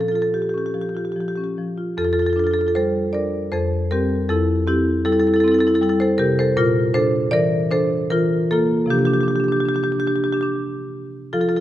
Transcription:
Already playing: A#2 F3
0.01 A4
0.08 F4 A4
0.15 A4
0.22 A4
0.34 G4
0.42 G4
0.49 G4
0.54 C#4
0.58 G4
0.66 G4
0.74 F3 G4
0.81 G4
0.89 G4
0.95 F4 G4
1.05 G4
1.12 F3 G4
1.21 G4
1.28 G4
1.36 C#4 G4
1.44 G4
1.58 F3
1.77 F4
1.97 F2 F4 A4
2.05 F4 A4
2.13 F4 A4
2.19 F4 A4
2.26 F4 A4
2.33 D4 A4
2.37 F4 A4
2.44 F4 A4
2.51 F4 A4
2.59 F4 A4
2.67 F4 A4
2.75 G3 A4 C5
3.13 D4 A#4 D5
3.52 F2 A4 C5
3.91 G3 C4 G4 A#4
4.29 F2 E4 A4
4.67 C4 E4 G4
5.05 G3 E4 A4
5.12 E4 A4
5.19 E4 A4
5.27 E4 A4
5.34 E4 A4
5.40 C4 E4 A4
5.48 E4 A4
5.54 A4
5.59 E4 A4
5.67 E4 A4
5.74 E4 A4
5.81 G3 E4 A4
5.89 E4 A4
6.00 A4 C5
6.18 C3 G4 A#4
6.39 A4 C5
6.57 A#2 F4 A#4
6.94 D4 A4 C5
7.31 E3 A#4 D5
7.71 D4 A4 C5
8.10 E3 F4 A#4
8.51 A#3 F4 A4
8.86 C3 F3
8.90 D4 G4
8.98 D4 G4
9.05 D4 G4
9.14 D4 G4
9.21 D4 G4
9.28 D4 G4
9.36 G4
9.40 D4
9.44 G4
9.48 D4 G4
9.57 D4 G4
9.65 D4 G4
9.74 D4 G4
9.83 D4 G4
9.92 D4 G4
9.99 D4 G4
10.07 D4 G4
10.16 D4 G4
10.24 D4 G4
10.32 D4 G4
10.41 D4 G4
11.33 F3 F4 A4
11.41 F4 A4
11.49 F4 A4
11.56 F4 A4

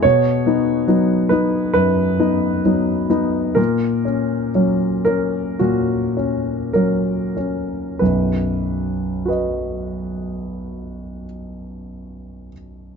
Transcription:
0.03 B2 C#5
0.46 B3 D#4
0.88 F#3 B3 D#4
1.29 B3 D#4 B4
1.73 F#2 B4
2.19 B3 D#4
2.65 F#3 B3 D#4
3.10 B3 D#4
3.55 A#2 A#4
4.05 C#4
4.55 F#3 C#4
5.05 C#4 A#4
5.59 A#2 F#4
6.17 C#4
6.73 F#3 C#4 A#4
7.37 C#4
7.99 B1 F#2 B4
9.25 F#4 B4
9.29 D#5

